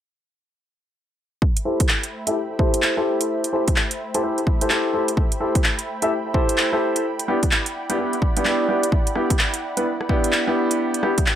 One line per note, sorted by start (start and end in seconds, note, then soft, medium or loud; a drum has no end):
1.42 7.01 A3 medium
1.42 7.01 C5 medium
1.42 7.01 E5 medium
1.42 11.35 G5 medium
1.42 11.35 B5 medium
1.42 kick loud
1.57 closed hi-hat soft
1.65 1.80 E4 medium
1.65 1.80 G4 medium
1.65 1.80 A4 medium
1.65 1.80 C5 medium
1.80 kick loud
1.80 closed hi-hat medium
1.89 clap loud
2.04 closed hi-hat soft
2.27 2.35 E4 medium
2.27 2.35 G4 medium
2.27 2.35 A4 medium
2.27 2.35 E5 medium
2.27 closed hi-hat medium
2.59 2.94 E4 medium
2.59 2.94 G4 medium
2.59 2.94 A4 medium
2.59 2.94 C5 loud
2.59 kick loud
2.74 closed hi-hat medium
2.82 clap loud
2.97 3.51 E4 medium
2.97 3.51 G4 medium
2.97 3.51 A4 medium
2.97 3.51 C5 medium
3.21 closed hi-hat medium
3.44 closed hi-hat soft
3.53 3.62 E4 medium
3.53 3.62 G4 medium
3.53 3.62 A4 medium
3.53 3.62 C5 medium
3.68 kick medium
3.68 closed hi-hat medium
3.76 clap loud
3.91 closed hi-hat medium
4.14 4.21 E4 medium
4.14 4.21 G4 medium
4.14 4.21 A4 medium
4.14 4.21 C5 loud
4.14 closed hi-hat medium
4.23 4.38 E4 medium
4.23 4.38 G4 medium
4.23 4.38 A4 medium
4.23 4.38 C5 medium
4.38 closed hi-hat soft
4.47 kick loud
4.61 4.68 E4 medium
4.61 4.68 G4 medium
4.61 4.68 A4 medium
4.61 4.68 C5 medium
4.61 closed hi-hat medium
4.70 4.91 E4 medium
4.70 4.91 G4 medium
4.70 4.92 A4 medium
4.70 4.91 C5 medium
4.70 clap loud
4.94 5.08 E4 medium
4.94 5.08 G4 medium
4.94 5.08 A4 medium
4.94 5.08 C5 medium
5.08 closed hi-hat medium
5.17 kick loud
5.32 closed hi-hat soft
5.40 5.55 E4 medium
5.40 5.55 G4 medium
5.40 5.55 A4 medium
5.40 5.55 C5 medium
5.55 kick loud
5.55 closed hi-hat medium
5.64 clap loud
5.79 closed hi-hat soft
6.02 6.11 E4 medium
6.02 6.11 G4 medium
6.02 6.11 A4 medium
6.02 6.11 E5 medium
6.02 closed hi-hat medium
6.34 6.69 E4 medium
6.34 6.69 G4 medium
6.34 6.69 A4 medium
6.34 6.69 C5 loud
6.34 kick loud
6.49 closed hi-hat medium
6.58 clap loud
6.73 7.04 E4 medium
6.73 7.04 G4 medium
6.73 7.04 A4 medium
6.73 7.04 C5 loud
6.96 closed hi-hat medium
7.04 11.35 E4 medium
7.04 11.35 D5 medium
7.04 11.35 F#5 medium
7.19 closed hi-hat soft
7.28 7.37 B3 medium
7.28 7.37 D4 medium
7.28 7.37 E4 medium
7.28 7.37 G4 medium
7.43 kick loud
7.43 closed hi-hat medium
7.51 clap loud
7.66 closed hi-hat medium
7.90 7.96 B3 medium
7.90 7.96 D4 medium
7.90 7.96 E4 medium
7.90 7.96 G4 loud
7.90 closed hi-hat medium
7.98 8.13 B3 medium
7.98 8.13 D4 medium
7.98 8.13 E4 medium
7.98 8.13 G4 medium
8.13 closed hi-hat soft
8.22 kick loud
8.37 8.43 B3 medium
8.37 8.43 D4 medium
8.37 8.43 E4 medium
8.37 8.43 G4 medium
8.37 closed hi-hat medium
8.45 8.67 B3 medium
8.45 8.67 D4 medium
8.45 8.67 E4 medium
8.45 8.67 G4 medium
8.45 clap loud
8.69 8.83 B3 medium
8.69 8.83 D4 medium
8.69 8.83 E4 medium
8.69 8.83 G4 medium
8.83 closed hi-hat medium
8.92 kick loud
9.07 closed hi-hat soft
9.15 9.30 B3 medium
9.15 9.30 D4 medium
9.15 9.30 E4 medium
9.15 9.30 G4 medium
9.15 cross-stick medium
9.30 kick loud
9.30 closed hi-hat medium
9.39 clap loud
9.54 closed hi-hat medium
9.77 9.86 B3 medium
9.77 9.86 D4 medium
9.77 9.86 E4 medium
9.77 9.86 B4 medium
9.77 closed hi-hat medium
10.01 cross-stick medium
10.09 10.44 B3 medium
10.09 10.44 D4 medium
10.09 10.44 E4 medium
10.09 10.44 G4 loud
10.09 kick medium
10.24 closed hi-hat medium
10.33 clap loud
10.47 11.01 B3 medium
10.47 11.01 D4 medium
10.47 11.01 E4 medium
10.47 11.01 G4 medium
10.71 closed hi-hat medium
10.94 closed hi-hat medium
11.03 11.12 B3 medium
11.03 11.12 D4 medium
11.03 11.12 E4 medium
11.03 11.12 G4 medium
11.03 cross-stick medium
11.18 kick medium
11.18 closed hi-hat medium
11.26 clap loud